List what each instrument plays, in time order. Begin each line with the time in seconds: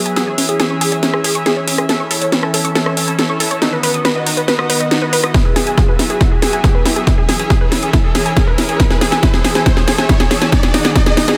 Already playing: riser
0.06 analog synth pad F#3 B3 G#4 E5, synth pluck G#5, closed hi-hat
0.16 analog synth pad E3 C#4 G#4 E5, synth pluck G#4, snare, closed hi-hat
0.27 synth pluck C#5
0.38 analog synth pad E3 C#4 G#4 E5, synth pluck C#4, open hi-hat
0.49 synth pluck G#4, closed hi-hat
0.60 analog synth pad E3 C#4 G#4 E5, synth pluck G#4, snare, closed hi-hat
0.70 analog synth pad E3 C#4 G#4 E5, synth pluck C#6
0.81 synth pluck G#4, open hi-hat
0.92 analog synth pad E3 C#4 G#4 E5, synth pluck C#5, closed hi-hat
1.03 analog synth pad E3 C#4 G#4 E5, synth pluck C#4, snare, closed hi-hat
1.14 synth pluck G#4, cross-stick
1.24 analog synth pad E3 C#4 G#4 E5, synth pluck G#4, open hi-hat
1.35 synth pluck C#6, closed hi-hat
1.46 analog synth pad E3 C#4 G#4 E5, synth pluck G#4, snare, closed hi-hat
1.57 analog synth pad E3 C#4 G#4 E5, synth pluck C#5
1.68 synth pluck C#4, open hi-hat
1.78 analog synth pad E3 C#4 G#4 E5, synth pluck G#4, cross-stick, closed hi-hat
1.89 analog synth pad E3 C#4 A4 E5, synth pluck A4, snare, closed hi-hat
2.00 synth pluck C#6
2.11 analog synth pad E3 C#4 A4 E5, synth pluck A4, open hi-hat
2.21 synth pluck C#5, closed hi-hat
2.32 analog synth pad E3 C#4 A4 E5, synth pluck C#4, snare, closed hi-hat
2.43 analog synth pad E3 C#4 A4 E5, synth pluck A4, cross-stick
2.54 synth pluck A4, open hi-hat
2.65 analog synth pad E3 C#4 A4 E5, synth pluck C#6, closed hi-hat
2.75 analog synth pad E3 C#4 A4 E5, synth pluck A4, snare, closed hi-hat
2.86 synth pluck C#5, cross-stick
2.97 analog synth pad E3 C#4 A4 E5, synth pluck C#4, open hi-hat
3.08 synth pluck A4, closed hi-hat
3.19 analog synth pad E3 C#4 A4 E5, synth pluck A4, snare, closed hi-hat
3.29 analog synth pad E3 C#4 A4 E5, synth pluck C#6
3.40 synth pluck A4, open hi-hat
3.51 analog synth pad E3 C#4 A4 E5, synth pluck C#5, closed hi-hat
3.62 analog synth pad D#3 B3 F#4 D#5, synth pluck D#4, snare, closed hi-hat
3.72 synth pluck B4
3.83 analog synth pad D#3 B3 F#4 D#5, synth pluck B4, open hi-hat
3.94 synth pluck D#6, closed hi-hat
4.05 analog synth pad D#3 B3 F#4 D#5, synth pluck B4, snare, closed hi-hat
4.16 analog synth pad D#3 B3 F#4 D#5, synth pluck D#5
4.26 synth pluck D#4, open hi-hat
4.37 analog synth pad D#3 B3 F#4 D#5, synth pluck B4, closed hi-hat
4.48 analog synth pad D#3 B3 F#4 D#5, synth pluck B4, snare, closed hi-hat
4.59 synth pluck D#6, cross-stick
4.70 analog synth pad D#3 B3 F#4 D#5, synth pluck B4, open hi-hat
4.80 synth pluck D#5, closed hi-hat
4.91 analog synth pad D#3 B3 F#4 D#5, synth pluck D#4, snare, closed hi-hat
5.02 analog synth pad D#3 B3 F#4 D#5, synth pluck B4
5.13 synth pluck B4, open hi-hat
5.24 analog synth pad D#3 B3 F#4 D#5, synth pluck D#6, cross-stick, closed hi-hat
5.34 analog synth pad F#3 B3 G#4 E5, synth pluck E4, kick, snare, closed hi-hat
5.45 synth pluck G#4
5.56 analog synth pad F#3 B3 G#4 E5, synth pluck G#4, snare, open hi-hat
5.67 synth pluck G#5, closed hi-hat
5.77 analog synth pad F#3 B3 G#4 E5, synth pluck G#4, kick, snare, closed hi-hat
5.88 analog synth pad F#3 B3 G#4 E5, synth pluck B4
5.99 synth pluck E4, snare, open hi-hat
6.10 analog synth pad F#3 B3 G#4 E5, synth pluck G#4, closed hi-hat
6.21 analog synth pad F#3 B3 G#4 E5, synth pluck E4, kick, snare, closed hi-hat
6.31 synth pluck G#4
6.42 analog synth pad F#3 B3 G#4 E5, synth pluck G#4, snare, open hi-hat
6.53 synth pluck G#5, closed hi-hat
6.64 analog synth pad F#3 B3 G#4 E5, synth pluck G#4, kick, snare, closed hi-hat
6.75 analog synth pad F#3 B3 G#4 E5, synth pluck B4
6.85 synth pluck E4, snare, open hi-hat
6.96 analog synth pad F#3 B3 G#4 E5, synth pluck G#4, closed hi-hat
7.07 analog synth pad E3 C#4 G#4 E5, synth pluck E4, kick, snare, closed hi-hat
7.18 synth pluck G#4
7.29 analog synth pad E3 C#4 G#4 E5, synth pluck G#4, snare, open hi-hat
7.39 synth pluck G#5, closed hi-hat
7.50 analog synth pad E3 C#4 G#4 E5, synth pluck G#4, kick, snare, closed hi-hat
7.61 analog synth pad E3 C#4 G#4 E5, synth pluck B4
7.72 synth pluck E4, snare, open hi-hat
7.83 analog synth pad E3 C#4 G#4 E5, synth pluck G#4, closed hi-hat
7.93 analog synth pad E3 C#4 G#4 E5, synth pluck E4, kick, snare, closed hi-hat
8.04 synth pluck G#4
8.15 analog synth pad E3 C#4 G#4 E5, synth pluck G#4, snare, open hi-hat
8.26 synth pluck G#5, closed hi-hat
8.37 analog synth pad E3 C#4 G#4 E5, synth pluck G#4, kick, snare, closed hi-hat
8.47 analog synth pad E3 C#4 G#4 E5, synth pluck B4
8.58 synth pluck E4, snare, open hi-hat
8.69 analog synth pad E3 C#4 G#4 E5, synth pluck G#4, closed hi-hat
8.80 analog synth pad E3 C#4 A4 E5, synth pluck E4, kick, snare, closed hi-hat
8.90 synth pluck G#4, snare
9.01 analog synth pad E3 C#4 A4 E5, synth pluck G#4, snare, open hi-hat
9.12 synth pluck G#5, snare, closed hi-hat
9.23 analog synth pad E3 C#4 A4 E5, synth pluck E4, kick, snare, closed hi-hat
9.34 analog synth pad E3 C#4 A4 E5, synth pluck G#4, snare
9.44 synth pluck G#4, snare, open hi-hat
9.55 analog synth pad E3 C#4 A4 E5, synth pluck G#5, snare, closed hi-hat
9.66 analog synth pad E3 C#4 A4 E5, synth pluck E4, kick, snare, closed hi-hat
9.77 synth pluck G#4, snare
9.88 analog synth pad E3 C#4 A4 E5, synth pluck G#4, snare, open hi-hat
9.98 synth pluck G#5, snare, closed hi-hat
10.09 analog synth pad E3 C#4 A4 E5, synth pluck E4, kick, snare, closed hi-hat
10.20 analog synth pad E3 C#4 A4 E5, synth pluck G#4, snare
10.31 synth pluck G#4, snare, open hi-hat
10.42 analog synth pad E3 C#4 A4 E5, synth pluck G#5, snare, closed hi-hat
10.52 analog synth pad D#3 B3 F#4 D#5, synth pluck D#4, kick, snare, closed hi-hat
10.63 synth pluck G#4, snare
10.74 analog synth pad D#3 B3 F#4 D#5, synth pluck D#4, snare, open hi-hat
10.85 synth pluck G#4, snare, closed hi-hat
10.96 analog synth pad D#3 B3 F#4 D#5, synth pluck D#4, kick, snare, closed hi-hat
11.06 analog synth pad D#3 B3 F#4 D#5, synth pluck G#4, snare
11.17 synth pluck D#4, snare, open hi-hat
11.28 analog synth pad D#3 B3 F#4 D#5, synth pluck G#4, snare, closed hi-hat